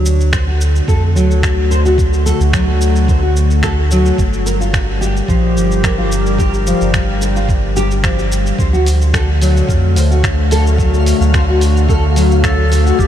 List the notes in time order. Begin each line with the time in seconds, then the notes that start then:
Already playing: D2 D3 F#3 D4
0.06 shaker
0.21 shaker
0.33 C5, finger snap, kick, shaker
0.47 A3 F#4
0.61 shaker
0.76 shaker
0.88 F2 A4, kick, shaker
1.15 D2 F#3, shaker
1.31 F#4, shaker
1.43 finger snap, kick, shaker
1.71 C5, shaker
1.85 F#4, shaker
1.98 kick, shaker
2.13 shaker
2.26 A4, shaker
2.40 D2, shaker
2.53 F#3, finger snap, kick, shaker
2.81 shaker
2.96 shaker
3.08 C5, kick, shaker
3.23 F#4
3.36 shaker
3.51 shaker
3.63 A4, finger snap, kick, shaker
3.91 F#3, shaker
4.06 shaker
4.18 G1 G3, kick, shaker
4.33 shaker
4.46 A#4, shaker
4.60 F4, shaker
4.67 G4
4.73 finger snap, kick, shaker
5.01 G4, shaker
5.17 shaker
5.26 A#1 F3 A#4, kick, shaker
5.57 G1, shaker
5.71 shaker
5.84 A#4, finger snap, kick, shaker
5.98 F4
6.12 shaker
6.26 shaker
6.39 G4, kick, shaker
6.54 shaker
6.67 F3, shaker
6.81 G1, shaker
6.94 finger snap, kick, shaker
7.22 A#4, shaker
7.36 F4, shaker
7.49 kick, shaker
7.76 G4, shaker
7.91 shaker
8.04 F3, finger snap, kick, shaker
8.19 shaker
8.32 shaker
8.47 shaker
8.59 D2 D3 C5 F5, kick, shaker
8.73 F#4, shaker
8.86 A3, open hi-hat, shaker
9.02 shaker
9.14 A4, finger snap, kick, shaker
9.42 F#3, open hi-hat, shaker
9.47 D4
9.57 shaker
9.69 F2, kick, shaker
9.92 F#4
9.96 D2 C5, open hi-hat, shaker
10.11 F#4, shaker
10.24 finger snap, kick, shaker
10.51 A4, open hi-hat, shaker
10.67 shaker
10.78 F#3, kick, shaker
10.94 shaker
11.06 open hi-hat, shaker
11.21 D2, shaker
11.34 C5, finger snap, kick, shaker
11.49 F#4
11.61 open hi-hat, shaker
11.77 shaker
11.89 A4, kick, shaker
12.16 F#3, open hi-hat, shaker
12.31 shaker
12.44 A4, finger snap, kick, shaker
12.72 C5, open hi-hat, shaker
12.86 F#4, shaker
12.99 G1 G3 G4, kick, shaker